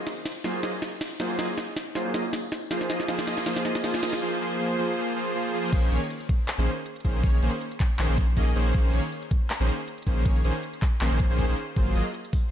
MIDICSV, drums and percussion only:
0, 0, Header, 1, 2, 480
1, 0, Start_track
1, 0, Key_signature, -5, "minor"
1, 0, Tempo, 377358
1, 1525, Time_signature, 4, 2, 24, 8
1, 15917, End_track
2, 0, Start_track
2, 0, Title_t, "Drums"
2, 85, Note_on_c, 9, 38, 72
2, 85, Note_on_c, 9, 42, 73
2, 212, Note_off_c, 9, 38, 0
2, 212, Note_off_c, 9, 42, 0
2, 215, Note_on_c, 9, 42, 59
2, 324, Note_off_c, 9, 42, 0
2, 324, Note_on_c, 9, 38, 77
2, 324, Note_on_c, 9, 42, 49
2, 368, Note_off_c, 9, 42, 0
2, 368, Note_on_c, 9, 42, 60
2, 405, Note_off_c, 9, 42, 0
2, 405, Note_on_c, 9, 42, 80
2, 452, Note_off_c, 9, 38, 0
2, 532, Note_off_c, 9, 42, 0
2, 564, Note_on_c, 9, 38, 77
2, 564, Note_on_c, 9, 42, 74
2, 691, Note_off_c, 9, 38, 0
2, 691, Note_off_c, 9, 42, 0
2, 805, Note_on_c, 9, 38, 82
2, 805, Note_on_c, 9, 42, 65
2, 932, Note_off_c, 9, 38, 0
2, 932, Note_off_c, 9, 42, 0
2, 1044, Note_on_c, 9, 38, 82
2, 1044, Note_on_c, 9, 42, 80
2, 1171, Note_off_c, 9, 38, 0
2, 1171, Note_off_c, 9, 42, 0
2, 1284, Note_on_c, 9, 38, 84
2, 1284, Note_on_c, 9, 42, 61
2, 1412, Note_off_c, 9, 38, 0
2, 1412, Note_off_c, 9, 42, 0
2, 1524, Note_on_c, 9, 38, 83
2, 1524, Note_on_c, 9, 42, 76
2, 1652, Note_off_c, 9, 38, 0
2, 1652, Note_off_c, 9, 42, 0
2, 1765, Note_on_c, 9, 38, 84
2, 1765, Note_on_c, 9, 42, 65
2, 1892, Note_off_c, 9, 38, 0
2, 1892, Note_off_c, 9, 42, 0
2, 2005, Note_on_c, 9, 38, 80
2, 2005, Note_on_c, 9, 42, 74
2, 2132, Note_off_c, 9, 38, 0
2, 2132, Note_off_c, 9, 42, 0
2, 2135, Note_on_c, 9, 42, 58
2, 2245, Note_off_c, 9, 42, 0
2, 2245, Note_on_c, 9, 38, 87
2, 2245, Note_on_c, 9, 42, 50
2, 2289, Note_off_c, 9, 42, 0
2, 2289, Note_on_c, 9, 42, 63
2, 2325, Note_off_c, 9, 42, 0
2, 2325, Note_on_c, 9, 42, 77
2, 2372, Note_off_c, 9, 38, 0
2, 2452, Note_off_c, 9, 42, 0
2, 2485, Note_on_c, 9, 38, 84
2, 2485, Note_on_c, 9, 42, 76
2, 2612, Note_off_c, 9, 38, 0
2, 2612, Note_off_c, 9, 42, 0
2, 2726, Note_on_c, 9, 38, 94
2, 2726, Note_on_c, 9, 42, 64
2, 2853, Note_off_c, 9, 38, 0
2, 2853, Note_off_c, 9, 42, 0
2, 2965, Note_on_c, 9, 38, 92
2, 2965, Note_on_c, 9, 42, 74
2, 3092, Note_off_c, 9, 38, 0
2, 3092, Note_off_c, 9, 42, 0
2, 3205, Note_on_c, 9, 38, 91
2, 3205, Note_on_c, 9, 42, 62
2, 3332, Note_off_c, 9, 38, 0
2, 3332, Note_off_c, 9, 42, 0
2, 3444, Note_on_c, 9, 38, 90
2, 3444, Note_on_c, 9, 42, 73
2, 3572, Note_off_c, 9, 38, 0
2, 3572, Note_off_c, 9, 42, 0
2, 3574, Note_on_c, 9, 38, 76
2, 3685, Note_off_c, 9, 38, 0
2, 3685, Note_on_c, 9, 38, 97
2, 3685, Note_on_c, 9, 42, 62
2, 3813, Note_off_c, 9, 38, 0
2, 3813, Note_off_c, 9, 42, 0
2, 3814, Note_on_c, 9, 38, 77
2, 3924, Note_off_c, 9, 38, 0
2, 3924, Note_on_c, 9, 38, 91
2, 3924, Note_on_c, 9, 42, 74
2, 4051, Note_off_c, 9, 38, 0
2, 4051, Note_off_c, 9, 42, 0
2, 4054, Note_on_c, 9, 38, 87
2, 4054, Note_on_c, 9, 42, 61
2, 4164, Note_off_c, 9, 38, 0
2, 4164, Note_off_c, 9, 42, 0
2, 4164, Note_on_c, 9, 38, 96
2, 4164, Note_on_c, 9, 42, 49
2, 4207, Note_off_c, 9, 42, 0
2, 4207, Note_on_c, 9, 42, 68
2, 4244, Note_off_c, 9, 42, 0
2, 4244, Note_on_c, 9, 42, 81
2, 4292, Note_off_c, 9, 38, 0
2, 4293, Note_on_c, 9, 38, 80
2, 4371, Note_off_c, 9, 42, 0
2, 4404, Note_off_c, 9, 38, 0
2, 4404, Note_on_c, 9, 38, 100
2, 4404, Note_on_c, 9, 42, 79
2, 4531, Note_off_c, 9, 38, 0
2, 4531, Note_off_c, 9, 42, 0
2, 4533, Note_on_c, 9, 38, 93
2, 4644, Note_off_c, 9, 38, 0
2, 4644, Note_on_c, 9, 38, 96
2, 4644, Note_on_c, 9, 42, 64
2, 4771, Note_off_c, 9, 38, 0
2, 4771, Note_off_c, 9, 42, 0
2, 4773, Note_on_c, 9, 38, 91
2, 4884, Note_off_c, 9, 38, 0
2, 4884, Note_on_c, 9, 38, 101
2, 4884, Note_on_c, 9, 42, 80
2, 5011, Note_off_c, 9, 38, 0
2, 5011, Note_off_c, 9, 42, 0
2, 5014, Note_on_c, 9, 38, 89
2, 5124, Note_off_c, 9, 38, 0
2, 5124, Note_on_c, 9, 38, 103
2, 5124, Note_on_c, 9, 42, 64
2, 5251, Note_off_c, 9, 38, 0
2, 5251, Note_off_c, 9, 42, 0
2, 5253, Note_on_c, 9, 38, 89
2, 5380, Note_off_c, 9, 38, 0
2, 7284, Note_on_c, 9, 36, 121
2, 7284, Note_on_c, 9, 42, 82
2, 7284, Note_on_c, 9, 49, 102
2, 7411, Note_off_c, 9, 36, 0
2, 7412, Note_off_c, 9, 42, 0
2, 7412, Note_off_c, 9, 49, 0
2, 7525, Note_on_c, 9, 42, 69
2, 7652, Note_off_c, 9, 42, 0
2, 7765, Note_on_c, 9, 42, 79
2, 7892, Note_off_c, 9, 42, 0
2, 7894, Note_on_c, 9, 42, 67
2, 8004, Note_off_c, 9, 42, 0
2, 8004, Note_on_c, 9, 36, 99
2, 8004, Note_on_c, 9, 42, 71
2, 8131, Note_off_c, 9, 36, 0
2, 8132, Note_off_c, 9, 42, 0
2, 8244, Note_on_c, 9, 39, 117
2, 8244, Note_on_c, 9, 42, 85
2, 8371, Note_off_c, 9, 39, 0
2, 8371, Note_off_c, 9, 42, 0
2, 8484, Note_on_c, 9, 42, 70
2, 8611, Note_off_c, 9, 42, 0
2, 8724, Note_on_c, 9, 42, 87
2, 8851, Note_off_c, 9, 42, 0
2, 8854, Note_on_c, 9, 42, 54
2, 8909, Note_off_c, 9, 42, 0
2, 8909, Note_on_c, 9, 42, 67
2, 8964, Note_off_c, 9, 42, 0
2, 8964, Note_on_c, 9, 36, 62
2, 8964, Note_on_c, 9, 42, 70
2, 9091, Note_off_c, 9, 36, 0
2, 9092, Note_off_c, 9, 42, 0
2, 9204, Note_on_c, 9, 36, 119
2, 9204, Note_on_c, 9, 42, 84
2, 9331, Note_off_c, 9, 36, 0
2, 9331, Note_off_c, 9, 42, 0
2, 9444, Note_on_c, 9, 42, 69
2, 9571, Note_off_c, 9, 42, 0
2, 9683, Note_on_c, 9, 42, 80
2, 9811, Note_off_c, 9, 42, 0
2, 9813, Note_on_c, 9, 42, 68
2, 9922, Note_off_c, 9, 42, 0
2, 9922, Note_on_c, 9, 39, 65
2, 9922, Note_on_c, 9, 42, 73
2, 9924, Note_on_c, 9, 36, 113
2, 10049, Note_off_c, 9, 39, 0
2, 10049, Note_off_c, 9, 42, 0
2, 10051, Note_off_c, 9, 36, 0
2, 10163, Note_on_c, 9, 39, 123
2, 10163, Note_on_c, 9, 42, 85
2, 10290, Note_off_c, 9, 39, 0
2, 10290, Note_off_c, 9, 42, 0
2, 10402, Note_on_c, 9, 42, 72
2, 10404, Note_on_c, 9, 36, 113
2, 10529, Note_off_c, 9, 42, 0
2, 10531, Note_off_c, 9, 36, 0
2, 10642, Note_on_c, 9, 42, 86
2, 10644, Note_on_c, 9, 36, 67
2, 10770, Note_off_c, 9, 42, 0
2, 10771, Note_off_c, 9, 36, 0
2, 10773, Note_on_c, 9, 42, 52
2, 10827, Note_off_c, 9, 42, 0
2, 10827, Note_on_c, 9, 42, 71
2, 10883, Note_off_c, 9, 42, 0
2, 10883, Note_on_c, 9, 42, 69
2, 11010, Note_off_c, 9, 42, 0
2, 11123, Note_on_c, 9, 42, 81
2, 11124, Note_on_c, 9, 36, 127
2, 11250, Note_off_c, 9, 42, 0
2, 11251, Note_off_c, 9, 36, 0
2, 11362, Note_on_c, 9, 42, 68
2, 11490, Note_off_c, 9, 42, 0
2, 11603, Note_on_c, 9, 42, 80
2, 11730, Note_off_c, 9, 42, 0
2, 11733, Note_on_c, 9, 42, 67
2, 11843, Note_off_c, 9, 42, 0
2, 11843, Note_on_c, 9, 42, 72
2, 11844, Note_on_c, 9, 36, 105
2, 11970, Note_off_c, 9, 42, 0
2, 11972, Note_off_c, 9, 36, 0
2, 12084, Note_on_c, 9, 39, 126
2, 12084, Note_on_c, 9, 42, 77
2, 12211, Note_off_c, 9, 39, 0
2, 12211, Note_off_c, 9, 42, 0
2, 12324, Note_on_c, 9, 42, 67
2, 12451, Note_off_c, 9, 42, 0
2, 12564, Note_on_c, 9, 42, 81
2, 12691, Note_off_c, 9, 42, 0
2, 12694, Note_on_c, 9, 42, 52
2, 12749, Note_off_c, 9, 42, 0
2, 12749, Note_on_c, 9, 42, 68
2, 12804, Note_off_c, 9, 42, 0
2, 12804, Note_on_c, 9, 42, 71
2, 12805, Note_on_c, 9, 36, 63
2, 12932, Note_off_c, 9, 36, 0
2, 12932, Note_off_c, 9, 42, 0
2, 13045, Note_on_c, 9, 36, 117
2, 13045, Note_on_c, 9, 42, 78
2, 13172, Note_off_c, 9, 36, 0
2, 13172, Note_off_c, 9, 42, 0
2, 13285, Note_on_c, 9, 42, 66
2, 13412, Note_off_c, 9, 42, 0
2, 13525, Note_on_c, 9, 42, 76
2, 13652, Note_off_c, 9, 42, 0
2, 13655, Note_on_c, 9, 42, 65
2, 13764, Note_off_c, 9, 42, 0
2, 13764, Note_on_c, 9, 39, 65
2, 13764, Note_on_c, 9, 42, 65
2, 13765, Note_on_c, 9, 36, 114
2, 13891, Note_off_c, 9, 39, 0
2, 13891, Note_off_c, 9, 42, 0
2, 13892, Note_off_c, 9, 36, 0
2, 14004, Note_on_c, 9, 39, 122
2, 14004, Note_on_c, 9, 42, 76
2, 14132, Note_off_c, 9, 39, 0
2, 14132, Note_off_c, 9, 42, 0
2, 14244, Note_on_c, 9, 42, 65
2, 14245, Note_on_c, 9, 36, 115
2, 14371, Note_off_c, 9, 42, 0
2, 14372, Note_off_c, 9, 36, 0
2, 14485, Note_on_c, 9, 36, 65
2, 14485, Note_on_c, 9, 42, 83
2, 14612, Note_off_c, 9, 36, 0
2, 14612, Note_off_c, 9, 42, 0
2, 14615, Note_on_c, 9, 42, 47
2, 14671, Note_off_c, 9, 42, 0
2, 14671, Note_on_c, 9, 42, 67
2, 14725, Note_off_c, 9, 42, 0
2, 14725, Note_on_c, 9, 42, 72
2, 14853, Note_off_c, 9, 42, 0
2, 14965, Note_on_c, 9, 36, 113
2, 14965, Note_on_c, 9, 42, 76
2, 15092, Note_off_c, 9, 36, 0
2, 15092, Note_off_c, 9, 42, 0
2, 15205, Note_on_c, 9, 42, 65
2, 15332, Note_off_c, 9, 42, 0
2, 15445, Note_on_c, 9, 42, 74
2, 15573, Note_off_c, 9, 42, 0
2, 15576, Note_on_c, 9, 42, 62
2, 15685, Note_on_c, 9, 36, 100
2, 15685, Note_on_c, 9, 46, 93
2, 15703, Note_off_c, 9, 42, 0
2, 15812, Note_off_c, 9, 36, 0
2, 15812, Note_off_c, 9, 46, 0
2, 15917, End_track
0, 0, End_of_file